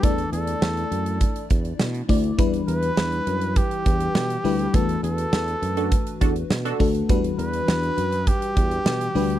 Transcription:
<<
  \new Staff \with { instrumentName = "Flugelhorn" } { \time 4/4 \key e \minor \tempo 4 = 102 a'8 a'2 r4. | r8 b'4. g'2 | a'8 a'2 r4. | r8 b'4. g'2 | }
  \new Staff \with { instrumentName = "Analog polysynth" } { \time 4/4 \key e \minor r1 | r1 | r4. r16 <d' fis' a'>16 r8 <d' fis' a'>16 r8 <d' fis' a'>8 r16 | r1 | }
  \new Staff \with { instrumentName = "FM electric piano" } { \time 4/4 \key e \minor <e a d' e' d''>4. r2 <a d' e' d''>8 | <e g d' e' b'>4. r2 <g d' e' b'>8 | <e a d' fis' b'>4. r2 <a d' fis' a'>8 | <e g d' fis' b'>4. r2 <g d' fis' b'>8 | }
  \new Staff \with { instrumentName = "Fretless electric bass" } { \clef bass \time 4/4 \key e \minor e,8 e,8 e,8 fis,8. r16 e,8 b,8 d,8 | e,8 e,8 e,8 fis,8. r16 e,8 b,8 d,8 | e,8 e,8 e,8 fis,8. r16 e,8 b,8 d,8 | e,8 e,8 e,8 fis,8. r16 e,8 b,8 d,8 | }
  \new DrumStaff \with { instrumentName = "Drums" } \drummode { \time 4/4 <hh bd>16 hh16 hh16 hh16 sn16 hh16 hh16 hh16 <hh bd>16 hh16 <hh bd>16 hh16 sn16 hh16 <hho bd>16 hh16 | <hh bd>16 hh16 hh16 hh16 sn16 hh16 hh16 hh16 <hh bd>16 hh16 <hh bd>16 hh16 sn16 hh16 hho16 hh16 | <hh bd>16 hh16 hh16 hh16 sn16 hh16 hh16 hh16 <hh bd>16 hh16 <hh bd>16 hh16 sn16 hh16 <hho bd>16 hh16 | <hh bd>16 hh16 hh16 hh16 sn16 hh16 hh16 hh16 <hh bd>16 hh16 <hh bd>16 hh16 sn16 hh16 hho16 hh16 | }
>>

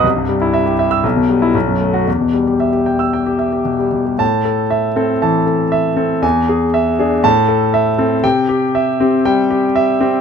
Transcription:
<<
  \new Staff \with { instrumentName = "Grand piano" } { \time 4/4 \key e \minor \tempo 4 = 119 << { r4. r16 e'''16 r8. e'16 r8. fis'16 | r4. r16 e'''8 r4. r16 | \key a \minor a''8. r2. r16 | gis''8. r4 r16 a''8. r4 r16 |
g''8. r2. r16 | } \\ { r1 | r1 | r8 a'8 e''8 a'8 a''8 a'8 e''8 a'8 | r8 gis'8 e''8 gis'8 r8 a'8 e''8 a'8 |
r8 g'8 e''8 g'8 g''8 g'8 e''8 g'8 | } >> }
  \new Staff \with { instrumentName = "Grand piano" } { \clef bass \time 4/4 \key e \minor c,16 g,16 g16 e'16 e''16 g'16 e''8 b,,16 b,16 g8 b,,16 fis,16 a8 | e,16 b,16 g16 g'16 e''16 g'16 g''8 g''16 g'16 e''16 g'16 b,16 g16 b,16 g16 | \key a \minor a,4. c'8 e8 r4 c'8 | e,4. d'8 a,4. c'8 |
c4. c'8 g8 r4 c'8 | }
>>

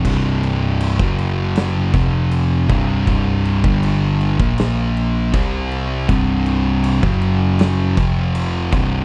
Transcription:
<<
  \new Staff \with { instrumentName = "Distorted electric guitar" } { \clef bass \time 4/4 \key f \minor \tempo 4 = 80 <c, g, c>4~ <c, g, c>16 <fis, cis fis>4~ <fis, cis fis>16 <f, c f>4 <c, g, c>8~ | <c, g, c>8. <g, d g>4 <bes, f bes>4~ <bes, f bes>16 <c g c'>4 | <c, g, c>4~ <c, g, c>16 <fis, cis fis>4~ <fis, cis fis>16 <f, c f>4 <c, g, c>8 | }
  \new Staff \with { instrumentName = "Distorted electric guitar" } { \clef bass \time 4/4 \key f \minor <c, g, c>4~ <c, g, c>16 <fis, cis fis>4~ <fis, cis fis>16 <f, c f>4 <c, g, c>8~ | <c, g, c>8. <g, d g>4 <bes, f bes>4~ <bes, f bes>16 <c g c'>4 | <c, g, c>4~ <c, g, c>16 <fis, cis fis>4~ <fis, cis fis>16 <f, c f>4 <c, g, c>8 | }
  \new Staff \with { instrumentName = "Picked electric bass" } { \clef bass \time 4/4 \key f \minor c,,4~ c,,16 fis,,4~ fis,,16 f,,4 c,,8~ | c,,8. g,,4 bes,,4~ bes,,16 c,4 | c,,4~ c,,16 fis,,4~ fis,,16 f,,4 c,,8 | }
  \new DrumStaff \with { instrumentName = "Drums" } \drummode { \time 4/4 <cymc bd>8 cymc8 cymc16 bd16 cymc8 <cymc sn>8 <cymc bd>8 cymc8 <cymc bd>8 | <cymc bd>8 cymc16 bd16 cymc8 cymc16 bd16 <cymc sn>8 cymc8 <cymc bd>8 cymc8 | <cymc bd>8 cymc8 cymc16 bd16 cymc8 <cymc sn>8 <cymc bd>8 cymc8 <cymc bd>8 | }
>>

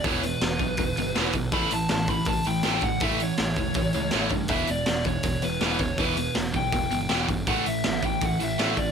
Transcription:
<<
  \new Staff \with { instrumentName = "Lead electric guitar" } { \time 4/4 \key e \dorian \tempo 4 = 161 cis''8 b'2. r8 | b''8 a''8 a''8 b''8 a''8 g''4 fis''8 | e''8 cis''2. r8 | e''8 d''4 cis''4 b'4 cis''8 |
b'4 r8 g''2 r8 | fis''8 e''8 e''8 g''8 fis''8 e''4 d''8 | }
  \new Staff \with { instrumentName = "Distorted electric guitar" } { \clef bass \time 4/4 \key e \dorian <e, b, e>8 <e, b,>8 <e, b,>8 <e, b,>8 <e, b,>8 <e, b,>8 <e, b, e>8 <e, b,>8 | <a, e a>8 <a, e>8 <a, e>8 <a, e>8 <a, e>8 <a, e>8 <a, e a>8 <a, e>8 | <a, e a>8 <a, e>8 <a, e>8 <a, e>8 <a, e>8 <a, e>8 <a, e a>8 <a, e>8 | <e, b, e>8 <e, b,>8 <e, b,>8 <e, b,>8 <e, b,>8 <e, b,>8 <e, b, e>8 <e, b,>8 |
<e, b, e>8 <e, b,>8 <e, b,>8 <e, b,>8 <e, b,>8 <e, b,>8 <e, b, e>8 <e, b,>8 | <a, e a>8 <a, e>8 <a, e>8 <a, e>8 <a, e>8 <a, e>8 <a, e a>8 <a, e>8 | }
  \new Staff \with { instrumentName = "Overdriven electric guitar" } { \clef bass \time 4/4 \key e \dorian <e, b, e>8 <e, b,>8 <e, b,>8 <e, b,>8 <e, b,>8 <e, b,>8 <e, b, e>8 <e, b,>8 | <a, e a>8 <a, e>8 <a, e>8 <a, e>8 <a, e>8 <a, e>8 <a, e a>8 <a, e>8 | <a, e a>8 <a, e>8 <a, e>8 <a, e>8 <a, e>8 <a, e>8 <a, e a>8 <a, e>8 | <e, b, e>8 <e, b,>8 <e, b,>8 <e, b,>8 <e, b,>8 <e, b,>8 <e, b, e>8 <e, b,>8 |
<e, b, e>8 <e, b,>8 <e, b,>8 <e, b,>8 <e, b,>8 <e, b,>8 <e, b, e>8 <e, b,>8 | <a, e a>8 <a, e>8 <a, e>8 <a, e>8 <a, e>8 <a, e>8 <a, e a>8 <a, e>8 | }
  \new Staff \with { instrumentName = "Picked electric bass" } { \clef bass \time 4/4 \key e \dorian e,,4 e,,8 b,,8 e,,8 g,,8 e,,8 b,,8 | a,,8 a,,8 a,,4 a,,8 a,,8 a,,8 a,,8 | a,,4 a,,8 e,,8 a,,8 cis,8 a,,8 g,8 | e,,8 e,,8 e,,4 e,,8 e,,8 e,,8 e,,8 |
e,,4 e,,8 b,,8 e,,8 g,,8 e,,8 g,,8 | a,,8 a,,8 a,,4 a,,8 a,,8 a,,8 a,,8 | }
  \new DrumStaff \with { instrumentName = "Drums" } \drummode { \time 4/4 <hho bd>8 hho8 <hho sn>8 <hho bd>8 <hho bd>8 hho8 <hho sn>8 <hho bd>8 | <hho bd>8 hho8 <hho sn>8 <hho bd>8 <hho bd>8 hho8 <hho sn>8 <hho bd>8 | <hho bd>8 hho8 <hho sn>8 <hho bd>8 <hho bd>8 hho8 <hho sn>8 <hho bd>8 | <hho bd>8 hho8 <hho sn>8 <hho bd>8 <hho bd>8 hho8 <hho sn>8 <hho bd>8 |
<hho bd>8 hho8 <hho sn>8 <hho bd>8 <hho bd>8 hho8 <hho sn>8 <hho bd>8 | <hho bd>8 hho8 <hho sn>8 <hho bd>8 <hho bd>8 hho8 <hho sn>8 <hho bd>8 | }
>>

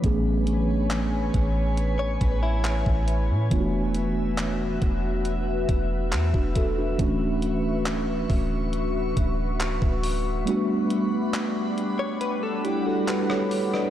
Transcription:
<<
  \new Staff \with { instrumentName = "Ambient pad" } { \time 4/4 \key a \major \tempo 4 = 69 << { gis''1 | fis'1 | <fis' cis'''>1 | <g b''>1 | } \\ { <b' cis''>1 | <b' e''>1~ | <b' e''>1 | <d' fis''>1 | } >> }
  \new Staff \with { instrumentName = "Clean electric guitar" } { \time 4/4 \key a \major r2 r16 cis''16 b'16 e'4~ e'16 | r1 | r1 | r4. r16 cis''16 b'16 a'16 g'16 fis'4~ fis'16 | }
  \new Staff \with { instrumentName = "Tine electric piano" } { \time 4/4 \key a \major r1 | r2. r16 <d' fis'>16 <fis' a'>16 <d' fis'>16~ | <d' fis'>16 r2. r8. | r2 r8 <e' g'>16 <fis' a'>16 <g' b'>16 <a' cis''>8 <b' d''>16 | }
  \new Staff \with { instrumentName = "Tine electric piano" } { \time 4/4 \key a \major <e a b cis' gis'>1 | <e a b d' f' fis'>1 | <e a cis' d' fis'>1 | <g a b d' fis'>1 | }
  \new Staff \with { instrumentName = "808-style bass" } { \clef bass \time 4/4 \key a \major a,,4. a,,4 a,,8. a,,8 a,16 | e,,4. e,,4 e,,8 e,16 e,,8. | d,,4. d,,4 d,,8. d,,8. | r1 | }
  \new DrumStaff \with { instrumentName = "Drums" } \drummode { \time 4/4 <hh bd>8 hh8 <hc hh>8 <hh bd>8 hh8 <hh bd>8 <hc hh>16 bd16 hh8 | <hh bd>8 hh8 <hc hh>8 <hh bd>8 hh8 <hh bd>8 <hc hh>16 bd16 <hh bd>8 | <hh bd>8 hh8 <hc hh>8 <hho bd>8 hh8 <hh bd>8 <hc hh>16 bd16 hho8 | hh8 hh8 <hc hh>8 hh8 hh8 hh8 <hc hh>16 ss16 hho16 ss16 | }
>>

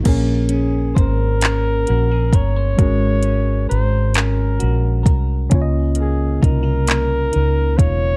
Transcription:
<<
  \new Staff \with { instrumentName = "Flugelhorn" } { \time 6/8 \key bes \minor \tempo 4. = 44 r8 aes'8 bes'4. des''8~ | des''4 c''8 bes'4 r8 | r8 aes'8 bes'4. des''8 | }
  \new Staff \with { instrumentName = "Tine electric piano" } { \time 6/8 \key bes \minor <bes des' aes' bes'>2. | <aes des' ges' bes'>2. | <bes des' f' des'' ees''>2. | }
  \new Staff \with { instrumentName = "Clean electric guitar" } { \time 6/8 \key bes \minor bes8 des'8 c''8 des'8 ges'16 aes'16 bes'16 c''16 | aes8 des'8 bes'8 des'8 ges'8 bes'8 | des8 bes8 ees'16 f'16 bes8 ees'8 f'8 | }
  \new Staff \with { instrumentName = "Fretless electric bass" } { \clef bass \time 6/8 \key bes \minor bes,,4 aes,,4 bes,,8 g,,8 | aes,,4 aes,,4 bes,,8 c,8 | des,4 c,4 des,8 fes,,8 | }
  \new DrumStaff \with { instrumentName = "Drums" } \drummode { \time 6/8 <cymc hh bd>8 hh8 <hh bd>8 <hc hh>8 hh8 <hh bd>8 | <hh bd>8 hh8 hh8 <hc hh>8 hh8 <hh bd>8 | <hh bd>8 hh8 <hh bd>8 <hc hh>8 hh8 <hh bd>8 | }
>>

